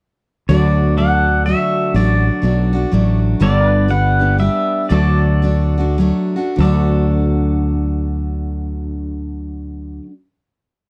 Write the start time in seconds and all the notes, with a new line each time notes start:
0.49 D2 D3 F#3 A3 D4 F#4 D5
0.97 F#3 A3 D4 F#4 A4 D5 F#5
1.46 F#3 A3 D4 F#4 E5
1.94 A1 D3 F#3 A3 D4 F#4 D5
2.42 B1 F#3 A3 D4 F#4
2.73 A3 D4 F#4
2.92 A1 F#3 A3 D4 F#4
3.40 G1 G2 D3 G3 B3 D4 G4 A4 D5
3.67 B4
3.88 G3 B3 D4 G4 F#5
4.19 G3 B3 D4 G4
4.38 G3 B3 D4 G4 E5
4.89 D2 D3 F#3 A3 D4 F#4 A4 D5
4.94 D5
5.42 F#3 A3 D4 F#4
5.78 A3 D4 F#4
5.98 F#3 A3 D4 F#4
6.36 A3 D4 F#4
6.56 D2 D3 F#3
6.60 A3 D4 A4 D5
6.65 F#4